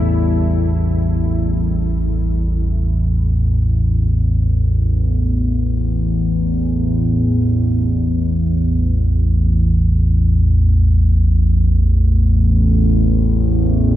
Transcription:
0, 0, Header, 1, 3, 480
1, 0, Start_track
1, 0, Tempo, 500000
1, 13404, End_track
2, 0, Start_track
2, 0, Title_t, "Analog synth pad"
2, 0, Program_c, 0, 89
2, 0, Note_on_c, 0, 45, 83
2, 0, Note_on_c, 0, 55, 90
2, 0, Note_on_c, 0, 64, 82
2, 0, Note_on_c, 0, 69, 79
2, 2010, Note_off_c, 0, 45, 0
2, 2015, Note_off_c, 0, 64, 0
2, 2018, Note_off_c, 0, 69, 0
2, 2020, Note_off_c, 0, 55, 0
2, 13404, End_track
3, 0, Start_track
3, 0, Title_t, "Synth drone"
3, 0, Program_c, 1, 95
3, 0, Note_on_c, 1, 33, 70
3, 0, Note_on_c, 1, 40, 63
3, 2009, Note_off_c, 1, 40, 0
3, 2012, Note_off_c, 1, 33, 0
3, 2020, Note_on_c, 1, 40, 74
3, 2023, Note_on_c, 1, 33, 82
3, 13404, Note_off_c, 1, 33, 0
3, 13404, Note_off_c, 1, 40, 0
3, 13404, End_track
0, 0, End_of_file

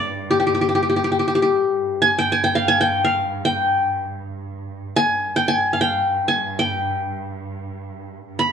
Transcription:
0, 0, Header, 1, 3, 480
1, 0, Start_track
1, 0, Tempo, 500000
1, 8181, End_track
2, 0, Start_track
2, 0, Title_t, "Qanun"
2, 0, Program_c, 0, 107
2, 0, Note_on_c, 0, 74, 81
2, 294, Note_on_c, 0, 67, 67
2, 377, Note_off_c, 0, 67, 0
2, 381, Note_on_c, 0, 67, 50
2, 445, Note_off_c, 0, 67, 0
2, 449, Note_on_c, 0, 67, 53
2, 520, Note_off_c, 0, 67, 0
2, 524, Note_on_c, 0, 67, 46
2, 585, Note_off_c, 0, 67, 0
2, 588, Note_on_c, 0, 67, 51
2, 657, Note_off_c, 0, 67, 0
2, 661, Note_on_c, 0, 67, 43
2, 716, Note_off_c, 0, 67, 0
2, 720, Note_on_c, 0, 67, 48
2, 789, Note_off_c, 0, 67, 0
2, 793, Note_on_c, 0, 67, 42
2, 855, Note_off_c, 0, 67, 0
2, 859, Note_on_c, 0, 67, 47
2, 872, Note_off_c, 0, 74, 0
2, 921, Note_off_c, 0, 67, 0
2, 925, Note_on_c, 0, 67, 45
2, 996, Note_off_c, 0, 67, 0
2, 1000, Note_on_c, 0, 67, 49
2, 1069, Note_off_c, 0, 67, 0
2, 1073, Note_on_c, 0, 67, 43
2, 1142, Note_off_c, 0, 67, 0
2, 1146, Note_on_c, 0, 67, 47
2, 1222, Note_off_c, 0, 67, 0
2, 1226, Note_on_c, 0, 67, 45
2, 1294, Note_off_c, 0, 67, 0
2, 1297, Note_on_c, 0, 67, 55
2, 1363, Note_off_c, 0, 67, 0
2, 1366, Note_on_c, 0, 67, 51
2, 1937, Note_on_c, 0, 80, 80
2, 1995, Note_off_c, 0, 67, 0
2, 2098, Note_on_c, 0, 79, 78
2, 2155, Note_off_c, 0, 80, 0
2, 2228, Note_on_c, 0, 80, 73
2, 2285, Note_off_c, 0, 79, 0
2, 2340, Note_on_c, 0, 79, 71
2, 2398, Note_off_c, 0, 80, 0
2, 2450, Note_on_c, 0, 77, 72
2, 2574, Note_on_c, 0, 80, 85
2, 2632, Note_off_c, 0, 79, 0
2, 2694, Note_on_c, 0, 79, 77
2, 2752, Note_off_c, 0, 80, 0
2, 2920, Note_off_c, 0, 77, 0
2, 2924, Note_on_c, 0, 77, 75
2, 3308, Note_off_c, 0, 79, 0
2, 3312, Note_on_c, 0, 79, 70
2, 3776, Note_off_c, 0, 77, 0
2, 4210, Note_off_c, 0, 79, 0
2, 4766, Note_on_c, 0, 80, 86
2, 5147, Note_on_c, 0, 79, 79
2, 5204, Note_off_c, 0, 80, 0
2, 5262, Note_on_c, 0, 80, 79
2, 5319, Note_off_c, 0, 79, 0
2, 5502, Note_on_c, 0, 77, 60
2, 5576, Note_on_c, 0, 79, 78
2, 5634, Note_off_c, 0, 80, 0
2, 6030, Note_on_c, 0, 80, 74
2, 6087, Note_off_c, 0, 79, 0
2, 6326, Note_on_c, 0, 79, 73
2, 6354, Note_off_c, 0, 77, 0
2, 6384, Note_off_c, 0, 80, 0
2, 7474, Note_off_c, 0, 79, 0
2, 8055, Note_on_c, 0, 83, 79
2, 8181, Note_off_c, 0, 83, 0
2, 8181, End_track
3, 0, Start_track
3, 0, Title_t, "Cello section"
3, 0, Program_c, 1, 48
3, 0, Note_on_c, 1, 43, 64
3, 1635, Note_off_c, 1, 43, 0
3, 1647, Note_on_c, 1, 43, 61
3, 4784, Note_off_c, 1, 43, 0
3, 4795, Note_on_c, 1, 43, 64
3, 7926, Note_off_c, 1, 43, 0
3, 7937, Note_on_c, 1, 43, 63
3, 8181, Note_off_c, 1, 43, 0
3, 8181, End_track
0, 0, End_of_file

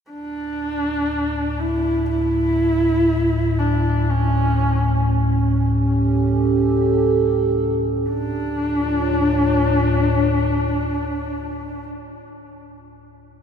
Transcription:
0, 0, Header, 1, 4, 480
1, 0, Start_track
1, 0, Key_signature, -1, "minor"
1, 0, Tempo, 1000000
1, 47, Time_signature, 4, 2, 24, 8
1, 6444, End_track
2, 0, Start_track
2, 0, Title_t, "Analog synth pad"
2, 0, Program_c, 0, 89
2, 1970, Note_on_c, 0, 61, 80
2, 2615, Note_on_c, 0, 67, 83
2, 2845, Note_on_c, 0, 69, 75
2, 3889, Note_off_c, 0, 61, 0
2, 3892, Note_off_c, 0, 67, 0
2, 3894, Note_off_c, 0, 69, 0
2, 3899, Note_on_c, 0, 62, 77
2, 3961, Note_on_c, 0, 65, 82
2, 4037, Note_on_c, 0, 73, 72
2, 5711, Note_off_c, 0, 62, 0
2, 5772, Note_off_c, 0, 65, 0
2, 5848, Note_off_c, 0, 73, 0
2, 6444, End_track
3, 0, Start_track
3, 0, Title_t, "Horsehead fiddle"
3, 0, Program_c, 1, 110
3, 51, Note_on_c, 1, 62, 78
3, 764, Note_on_c, 1, 64, 77
3, 772, Note_off_c, 1, 62, 0
3, 1002, Note_off_c, 1, 64, 0
3, 1005, Note_on_c, 1, 64, 94
3, 1723, Note_on_c, 1, 62, 75
3, 1731, Note_off_c, 1, 64, 0
3, 1967, Note_on_c, 1, 61, 74
3, 1975, Note_off_c, 1, 62, 0
3, 2447, Note_off_c, 1, 61, 0
3, 3887, Note_on_c, 1, 62, 81
3, 5698, Note_off_c, 1, 62, 0
3, 6444, End_track
4, 0, Start_track
4, 0, Title_t, "Synth drone"
4, 0, Program_c, 2, 95
4, 50, Note_on_c, 2, 38, 67
4, 54, Note_on_c, 2, 45, 66
4, 3882, Note_off_c, 2, 45, 0
4, 3883, Note_off_c, 2, 38, 0
4, 3887, Note_on_c, 2, 45, 71
4, 3888, Note_on_c, 2, 38, 68
4, 5699, Note_off_c, 2, 45, 0
4, 5700, Note_off_c, 2, 38, 0
4, 6444, End_track
0, 0, End_of_file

